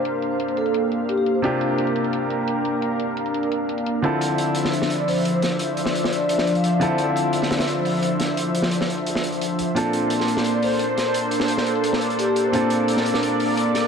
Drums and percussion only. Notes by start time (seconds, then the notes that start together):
0.05 closed hi-hat
0.22 closed hi-hat
0.40 closed hi-hat
0.48 closed hi-hat
0.57 closed hi-hat
0.66 closed hi-hat
0.74 closed hi-hat
0.92 closed hi-hat
1.09 closed hi-hat
1.26 closed hi-hat
1.44 closed hi-hat
1.61 closed hi-hat
1.78 closed hi-hat
1.87 closed hi-hat
1.96 closed hi-hat
2.04 closed hi-hat
2.13 closed hi-hat
2.30 closed hi-hat
2.48 closed hi-hat
2.65 closed hi-hat
2.82 closed hi-hat
3.00 closed hi-hat
3.17 closed hi-hat
3.26 closed hi-hat
3.34 closed hi-hat
3.43 closed hi-hat
3.52 closed hi-hat
3.69 closed hi-hat
3.78 closed hi-hat
3.86 closed hi-hat
4.04 closed hi-hat
4.21 closed hi-hat
4.38 closed hi-hat
4.55 closed hi-hat
4.65 snare, closed hi-hat
4.73 closed hi-hat
4.82 snare, closed hi-hat
4.90 closed hi-hat
5.08 closed hi-hat, open hi-hat
5.25 closed hi-hat
5.42 snare, closed hi-hat
5.59 closed hi-hat
5.77 closed hi-hat
5.86 snare
5.95 closed hi-hat
6.03 snare, closed hi-hat
6.12 closed hi-hat
6.21 closed hi-hat
6.29 closed hi-hat
6.38 snare
6.47 closed hi-hat
6.55 closed hi-hat
6.64 closed hi-hat
6.81 closed hi-hat
6.98 closed hi-hat
7.16 closed hi-hat
7.33 closed hi-hat
7.42 snare, closed hi-hat
7.51 snare, closed hi-hat
7.59 snare, closed hi-hat
7.68 closed hi-hat
7.85 closed hi-hat, open hi-hat
8.03 closed hi-hat
8.20 snare, closed hi-hat
8.37 closed hi-hat
8.55 closed hi-hat
8.62 snare
8.71 closed hi-hat
8.81 snare, closed hi-hat
8.89 closed hi-hat
8.98 closed hi-hat
9.06 closed hi-hat
9.15 snare
9.24 closed hi-hat
9.32 closed hi-hat
9.41 closed hi-hat
9.59 closed hi-hat
9.76 closed hi-hat
9.93 closed hi-hat
10.10 closed hi-hat
10.20 snare, closed hi-hat
10.28 closed hi-hat
10.37 snare, closed hi-hat
10.44 closed hi-hat
10.62 closed hi-hat, open hi-hat
10.79 closed hi-hat
10.98 snare, closed hi-hat
11.14 closed hi-hat
11.31 closed hi-hat
11.40 snare
11.48 closed hi-hat
11.57 snare, closed hi-hat
11.66 closed hi-hat
11.75 closed hi-hat
11.84 closed hi-hat
11.93 snare
12.01 closed hi-hat
12.10 closed hi-hat
12.19 closed hi-hat
12.36 closed hi-hat
12.53 closed hi-hat
12.70 closed hi-hat
12.88 closed hi-hat
12.97 snare, closed hi-hat
13.05 closed hi-hat
13.14 snare, closed hi-hat
13.23 closed hi-hat
13.40 closed hi-hat, open hi-hat
13.57 closed hi-hat
13.75 snare, closed hi-hat